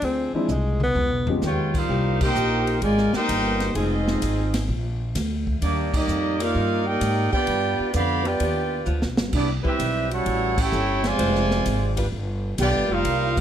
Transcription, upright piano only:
0.34 0.48 F3 medium
0.34 0.48 G#3 medium
0.34 0.48 C4 medium
0.34 0.48 D4 medium
0.34 0.48 E4 medium
1.28 1.41 F3 medium
1.28 1.41 G#3 medium
1.28 1.41 B3 medium
1.28 1.41 C#4 medium
1.28 1.41 G4 medium

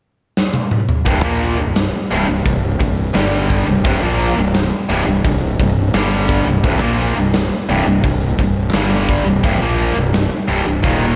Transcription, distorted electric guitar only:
1.06 1.22 C2 medium
1.06 1.23 G2 medium
1.23 1.57 A#2 loud
1.23 1.58 F3 loud
1.23 1.58 A#3 loud
1.59 1.86 C2 medium
1.59 1.87 G2 medium
2.11 2.26 C2 medium
2.11 2.27 G2 medium
2.27 2.44 C2 medium
2.27 2.45 G2 medium
2.46 2.74 C2 medium
2.46 2.74 G2 medium
2.80 3.08 C2 medium
2.80 3.08 G2 medium
3.14 3.66 G2 medium
3.14 3.66 D3 loud
3.14 3.67 G3 loud
3.67 3.84 C2 medium
3.67 3.85 G2 medium
3.85 4.01 C2 medium
3.85 4.02 G2 medium
4.02 4.36 A#2 loud
4.02 4.37 F3 loud
4.02 4.37 A#3 loud
4.37 4.65 C2 medium
4.37 4.65 G2 medium
4.89 5.05 C2 medium
4.89 5.06 G2 loud
5.07 5.24 C2 medium
5.07 5.24 G2 medium
5.25 5.53 C2 medium
5.25 5.53 G2 medium
5.60 5.88 C2 medium
5.60 5.88 G2 medium
5.94 6.46 G2 medium
5.94 6.46 D3 loud
5.94 6.47 G3 loud
6.47 6.62 C2 medium
6.47 6.63 G2 medium
6.63 6.80 C2 medium
6.63 6.81 G2 medium
6.80 7.15 A#2 loud
6.80 7.15 F3 loud
6.80 7.16 A#3 loud
7.15 7.44 C2 medium
7.15 7.45 G2 medium
7.69 7.85 C2 medium
7.69 7.86 G2 medium
7.86 8.02 C2 medium
7.86 8.03 G2 medium
8.04 8.32 C2 medium
8.04 8.32 G2 medium
8.39 8.67 C2 medium
8.39 8.68 G2 medium
8.73 9.25 G2 medium
8.73 9.26 D3 medium
8.73 9.26 G3 loud
9.26 9.42 C2 medium
9.26 9.43 G2 medium
9.43 9.60 C2 medium
9.43 9.61 G2 medium
9.61 9.95 A#2 loud
9.61 9.96 F3 loud
9.61 9.96 A#3 loud
9.95 10.24 C2 medium
9.95 10.24 G2 medium
10.48 10.65 C2 medium
10.48 10.65 G2 medium
10.66 10.82 C2 medium
10.66 10.83 G2 medium
10.83 11.16 D#2 loud
10.83 11.16 A#2 loud
10.83 11.16 D#3 loud

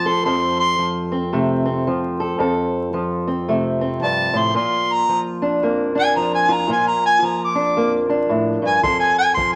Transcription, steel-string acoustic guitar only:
0.00 0.25 F2 medium
0.00 0.78 F3 medium
0.00 1.33 A3 medium
0.00 1.11 C4 medium
0.06 0.25 A4 medium
0.26 2.37 F2 medium
0.26 2.19 A4 medium
0.78 1.87 F3 medium
1.12 1.64 C4 medium
1.33 1.86 C3 medium
1.33 2.38 A3 medium
1.66 3.27 C4 medium
1.87 2.93 F3 medium
2.20 2.38 A4 medium
2.39 4.00 F2 medium
2.39 4.52 A4 medium
2.94 5.08 F3 medium
3.28 3.80 C4 medium
3.48 4.53 C3 medium
3.48 4.53 A3 medium
3.81 4.55 C4 medium
4.02 4.33 G2 medium
4.33 4.55 A2 medium
4.54 5.62 A#2 medium
4.54 6.48 F4 medium
5.09 6.16 F3 medium
5.42 5.94 D4 medium
5.62 6.70 F2 medium
5.62 6.68 A#3 medium
5.95 6.67 D4 medium
6.16 7.22 F3 medium
6.49 6.69 F4 medium
6.68 7.76 A#2 medium
6.68 8.83 F4 medium
7.22 9.36 F3 medium
7.55 8.08 D4 medium
7.76 8.29 F2 medium
7.76 8.82 A#3 medium
8.09 8.81 D4 medium
8.29 8.62 A2 medium
8.62 8.83 G2 medium
8.83 9.55 F2 medium
8.83 9.55 A4 medium
9.37 9.55 F3 medium

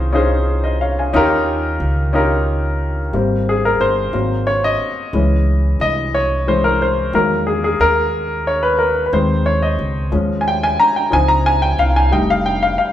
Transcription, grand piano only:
0.00 1.15 D#3 medium
0.00 0.13 C#4 medium
0.00 0.13 D#4 medium
0.00 0.13 F4 medium
0.00 0.15 G#4 medium
0.00 0.15 C5 loud
0.13 0.99 C#4 medium
0.13 0.99 D#4 medium
0.13 1.00 F4 medium
0.13 1.00 G#4 medium
0.13 0.48 C5 medium
0.64 0.80 C5 soft
0.64 0.80 D#5 medium
0.81 0.97 C#5 medium
0.81 0.97 F5 medium
0.99 1.30 F5 soft
0.99 1.30 G#5 medium
1.13 2.10 D#3 medium
1.13 2.00 C#4 medium
1.13 2.00 D#4 medium
1.13 2.00 F4 medium
1.13 2.01 G4 medium
1.13 2.01 A#4 loud
2.13 2.99 C#4 medium
2.13 3.00 D#4 medium
2.13 3.00 F4 medium
2.13 3.00 G4 medium
2.13 3.01 A#4 medium
3.13 4.09 G3 soft
3.13 4.10 A#3 soft
3.13 4.10 C4 medium
3.49 3.65 G#4 medium
3.65 3.82 A#4 medium
3.81 4.49 C5 medium
4.13 5.09 F#3 soft
4.13 5.09 A#3 soft
4.13 5.10 C4 soft
4.47 4.64 C#5 medium
4.64 5.60 D#5 medium
5.14 5.58 E3 soft
5.14 5.58 G#3 soft
5.14 5.58 C#4 medium
5.81 6.15 D#5 medium
6.14 6.48 C#5 medium
6.47 6.77 E3 soft
6.47 6.77 G#3 soft
6.47 6.77 C#4 soft
6.47 6.65 C5 medium
6.64 6.81 A#4 medium
6.82 7.15 C5 medium
7.14 8.09 D#3 soft
7.14 8.09 F#3 soft
7.14 8.10 G#3 soft
7.14 8.10 A#3 medium
7.14 7.48 A#4 medium
7.47 7.62 G#4 medium
7.64 7.81 G#4 medium
7.81 8.49 A#4 medium
8.47 8.64 C#5 medium
8.63 8.78 B4 medium
8.79 9.06 A#4 medium
9.06 9.13 B4 medium
9.13 10.09 D#3 soft
9.13 10.09 G#3 soft
9.13 10.09 C4 medium
9.13 9.47 C5 medium
9.46 9.63 C#5 medium
9.62 9.94 D#5 medium
10.12 11.08 F3 soft
10.12 11.09 G#3 soft
10.12 11.09 C#4 medium
10.41 10.46 G#5 medium
10.48 10.62 G5 medium
10.63 10.80 G#5 medium
10.80 10.95 A#5 medium
10.96 11.13 G5 medium
11.10 12.07 F3 soft
11.10 12.08 C4 soft
11.10 12.08 D#4 medium
11.10 11.30 G#5 medium
11.28 11.46 A#5 medium
11.46 11.63 G#5 medium
11.62 11.78 G5 medium
11.79 11.96 F5 medium
11.96 12.13 G#5 medium
12.11 12.56 G3 soft
12.11 12.56 A3 soft
12.11 12.57 D#4 medium
12.11 12.28 G5 medium
12.30 12.47 F5 medium
12.46 12.61 G5 medium
12.63 12.77 F5 medium
12.78 12.93 F5 medium

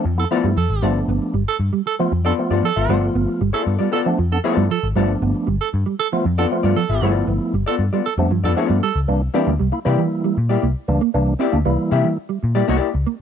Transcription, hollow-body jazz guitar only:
0.31 0.46 B3 medium
0.31 0.46 F4 medium
0.31 0.47 A4 loud
0.31 0.47 D5 medium
0.82 0.98 B3 medium
0.82 0.98 F4 medium
0.82 0.98 A4 medium
0.82 0.98 D5 medium
2.25 2.40 B3 medium
2.25 2.40 F4 medium
2.25 2.40 A4 medium
2.25 2.40 D5 medium
2.51 2.66 B3 medium
2.51 2.66 F4 medium
2.51 2.66 A4 medium
2.51 2.66 D5 medium
2.76 2.87 B3 soft
2.76 2.88 F4 medium
2.76 2.88 A4 medium
2.76 2.88 E5 medium
2.88 3.04 B3 medium
2.88 3.04 F4 medium
2.88 3.05 A4 medium
2.88 3.05 D5 medium
3.53 3.75 B3 medium
3.53 3.74 F4 medium
3.53 3.74 A4 medium
3.53 3.74 D5 medium
3.79 3.91 B3 soft
3.79 3.91 F4 medium
3.79 3.91 A4 medium
3.79 3.91 D5 medium
3.92 4.07 B3 medium
3.92 4.08 F4 medium
3.92 4.08 A4 loud
3.92 4.08 D5 medium
4.44 4.64 B3 medium
4.44 4.64 F4 loud
4.44 4.65 A4 loud
4.44 4.65 D5 loud
4.96 5.11 B3 medium
4.96 5.11 F4 medium
4.96 5.12 A4 medium
4.96 5.12 D5 medium
6.38 6.54 B3 medium
6.38 6.53 F4 medium
6.38 6.53 A4 medium
6.38 6.53 D5 medium
6.63 6.79 B3 medium
6.63 6.79 F4 medium
6.63 6.79 A4 medium
6.63 6.78 D5 medium
6.90 7.01 B3 soft
6.90 7.01 F4 medium
6.90 7.02 A4 medium
6.90 7.01 E5 medium
7.02 7.22 B3 medium
7.02 7.23 F4 medium
7.02 7.23 A4 medium
7.02 7.23 D5 medium
7.66 7.82 B3 medium
7.66 7.82 F4 medium
7.66 7.82 A4 medium
7.66 7.82 D5 medium
7.93 8.05 B3 medium
7.93 8.05 F4 medium
7.93 8.05 A4 medium
7.93 8.04 D5 medium
8.44 8.56 B3 medium
8.44 8.56 F4 medium
8.44 8.57 A4 medium
8.44 8.57 D5 medium
8.57 8.77 B3 medium
8.57 8.77 F4 medium
8.57 8.78 A4 medium
8.57 8.78 D5 loud
9.34 9.49 A#3 medium
9.34 9.49 E4 medium
9.34 9.49 G4 medium
9.34 9.50 D5 loud
9.85 10.00 A#3 medium
9.85 10.01 E4 medium
9.85 10.01 G4 medium
9.85 10.01 D5 medium
10.49 10.65 A#3 medium
10.49 10.65 E4 medium
10.49 10.65 G4 medium
10.49 10.65 D5 medium
11.40 11.55 A#3 medium
11.40 11.55 E4 medium
11.40 11.55 G4 medium
11.40 11.55 D5 loud
11.91 12.06 A#3 medium
11.91 12.07 E4 medium
11.91 12.07 G4 medium
11.91 12.07 E5 medium
12.55 12.67 A#3 medium
12.55 12.67 E4 medium
12.55 12.68 G4 medium
12.55 12.68 D5 loud
12.68 12.88 A#3 loud
12.68 12.89 E4 loud
12.68 12.89 G4 medium
12.68 12.89 D5 loud

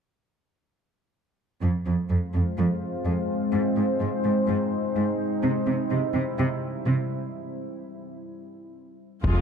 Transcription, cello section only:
1.62 1.70 F2 soft
1.86 1.94 F2 soft
2.10 2.18 F2 soft
2.34 2.42 F2 soft
2.58 2.66 F2 soft
3.06 3.14 F2 soft
3.53 3.61 G#2 soft
3.77 3.85 G#2 soft
4.01 4.09 G#2 soft
4.25 4.33 G#2 soft
4.48 4.56 G#2 soft
4.96 5.04 G#2 soft
5.43 5.51 C3 soft
5.67 5.75 C3 soft
5.91 5.99 C3 soft
6.14 6.22 C3 soft
6.38 6.46 C3 medium
6.86 6.94 C3 soft
9.24 9.41 F2 soft

